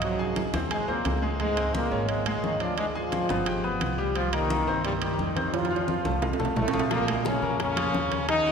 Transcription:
Already playing: G#1 D#4 D#5
0.01 F#2 F#3, high conga, high timbale
0.19 G#4 G#5, high conga
0.36 high conga, high timbale
0.53 D#2 C4 C5, high conga, high timbale
0.70 G#2 G#3 G#4 G#5, high conga, high timbale
0.87 D#2 A#2 A#3 C4 C5, high conga
1.05 C#2, high conga, high timbale, low timbale
1.22 G#3 G#4
1.39 G#2 G#3 G#4, high conga, high timbale
1.57 C4 C5, high conga, high timbale
1.74 A#2 A#3, high conga
1.91 G#1 C#4 C#5, high conga
2.08 G#2 G#3, high conga, high timbale
2.25 G#2 G#3 G#4, high conga, high timbale
2.42 D2 D#3 D#4, high conga
2.59 F3 D4 F4 D5, high timbale
2.77 G#2 G#3, high conga, high timbale
2.94 F3 F4 G#4 G#5, high conga
3.12 high conga, high timbale
3.29 G1 B3 B4, high conga, high timbale
3.46 G4 G5, high conga, high timbale
3.64 B3 B4, high conga
3.81 C2, high conga, high timbale
3.98 G3 G4
4.15 F3 G3 F4 G4, high conga, high timbale
4.32 D#3 A#3 D#4 A#4, high conga, high timbale
4.50 high conga
4.67 G2 C4 C5, high conga
4.84 G2 G3, high conga, high timbale
5.01 D#3 G3 D#4 G4, high conga, high timbale
5.19 F2, high conga
5.36 C4 C5, high conga, high timbale
5.53 F3 F4, high conga, high timbale
5.65 high timbale
5.71 F4 F5, high conga
5.76 high timbale
5.88 high conga
6.04 C2 A3 A4, high conga
6.22 F4 F5, low conga, low timbale
6.33 low timbale
6.39 C2 A3 A4, low conga
6.45 low timbale
6.56 A#1 A2 A3, low conga, low timbale
6.68 low timbale
6.73 F3 F4, low conga
6.79 low timbale
6.91 A#2 F3 A#3 F4, high bongo, high conga, high timbale
7.08 G#3 G#4, high bongo, high conga, high timbale
7.25 C#3 C#4, high bongo, high conga
7.42 F2 A#3 A#4, high bongo, high conga
7.60 C#3 C#4, high bongo, high conga, high timbale
7.76 F3 F4, high bongo, high conga, high timbale
7.93 D#2, high bongo, low bongo, high conga
8.11 C#4 C#5, high timbale
8.29 D#3 D#4, high bongo, high conga, high timbale
8.46 F#4 F#5, high bongo, high conga

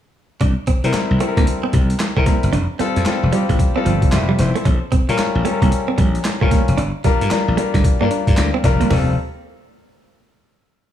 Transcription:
0.41 C2 D4, kick, closed hi-hat
0.67 C4, muted slap bass stroke, kick, closed hi-hat
0.84 C3 G3 C4 E4 A#4, muted clean electric guitar stroke, closed hi-hat
0.93 muted slap bass stroke, muted clean electric guitar stroke, snare, clap, closed hi-hat
1.11 C2
1.20 G3 A3 C4 E4 A4, closed hi-hat
1.28 A#4
1.37 D2 A#3, kick, closed hi-hat
1.47 muted clean electric guitar stroke, closed hi-hat
1.63 C4
1.73 C2 G3, kick, closed hi-hat
1.90 closed hi-hat
1.99 muted clean electric guitar stroke, snare, clap, closed hi-hat
2.17 C3 G3 A3 C4 E4 A#4, kick
2.26 A#3, kick, snare, closed hi-hat
2.43 G1, closed hi-hat
2.53 F1 D4, closed hi-hat
2.79 G3 C4 F4 A4, muted slap bass stroke, closed hi-hat
2.96 F2, muted clean electric guitar stroke, closed hi-hat
3.05 G3 C4 F4 A4, muted clean electric guitar stroke, muted slap bass stroke, snare, clap, closed hi-hat
3.23 F1
3.33 G3 C4 F4 G4, closed hi-hat
3.49 A1 A3, kick, closed hi-hat
3.59 muted clean electric guitar stroke, kick, closed hi-hat
3.76 G3 C4 F4 A4
3.85 G1 F3, closed hi-hat
4.02 kick, closed hi-hat
4.12 F1 G4 E5, snare, clap, closed hi-hat
4.29 G3
4.39 F1 E4 C5, muted clean electric guitar stroke, snare, closed hi-hat
4.56 A3 C4 A4, closed hi-hat
4.65 A#1 C#4, kick, closed hi-hat
4.92 C4, muted slap bass stroke, kick, closed hi-hat
5.09 A#2 G3 C#4 F4 A#4, muted clean electric guitar stroke, closed hi-hat
5.18 muted clean electric guitar stroke, muted slap bass stroke, snare, clap, closed hi-hat
5.35 A#1
5.45 G3 A3 C#4 F4 A4, closed hi-hat
5.52 A#4
5.62 C2 A#3, kick, closed hi-hat
5.71 muted clean electric guitar stroke, closed hi-hat
5.88 C4
5.98 A#1 G3, kick, closed hi-hat
6.15 closed hi-hat
6.24 muted clean electric guitar stroke, snare, clap, closed hi-hat
6.41 A#2 G3 A3 C#4 F4 A#4, kick
6.51 A#3, kick, snare, closed hi-hat
6.68 F1, closed hi-hat
6.78 G1 D4, closed hi-hat
7.04 G3 D4 F4 A#4, muted slap bass stroke, kick, closed hi-hat
7.21 G2, muted clean electric guitar stroke, closed hi-hat
7.31 G3 D4 F4 A#4, muted clean electric guitar stroke, muted slap bass stroke, snare, clap, closed hi-hat
7.48 A#1
7.57 G3 A3 D4 F4 A#4, closed hi-hat
7.74 D2 G3, kick, snare, closed hi-hat
7.84 muted clean electric guitar stroke, kick, closed hi-hat
8.01 G2 G3 A#3 D4 F4 A#4
8.11 D4, closed hi-hat
8.27 G2, kick, closed hi-hat
8.37 D2, snare, clap, closed hi-hat
8.54 C4
8.64 F1 G3 D4 F4 A#4, muted clean electric guitar stroke, kick, snare, closed hi-hat
8.81 G1 A#3, closed hi-hat
8.90 F1 G3 A3 C4 F4 A4, snare, floor tom, open hi-hat

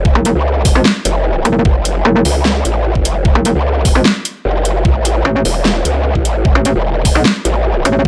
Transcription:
Already playing: F#1
0.05 kick
0.15 F#1
0.25 closed hi-hat
0.35 C#2
0.65 kick, open hi-hat
0.75 G#1
0.85 snare
1.05 F#1, closed hi-hat
1.45 F#1, closed hi-hat
1.65 F#1, kick
1.85 closed hi-hat
2.05 F#1
2.25 C#2, open hi-hat
2.45 snare
2.65 A1, closed hi-hat
2.95 F#1, kick
3.05 closed hi-hat
3.25 kick
3.35 F#1
3.45 closed hi-hat
3.55 C#2
3.85 kick, open hi-hat
3.95 G#1
4.05 snare
4.25 closed hi-hat
4.45 F#1
4.65 closed hi-hat
4.85 A1, kick
5.05 closed hi-hat
5.25 A1
5.45 E1, open hi-hat
5.65 snare
5.85 C#2, closed hi-hat
6.15 A1, kick
6.25 closed hi-hat
6.45 kick
6.55 A1
6.65 closed hi-hat
6.75 E1
7.05 kick, open hi-hat
7.15 B1
7.25 snare
7.45 A1, closed hi-hat
7.85 A1, closed hi-hat

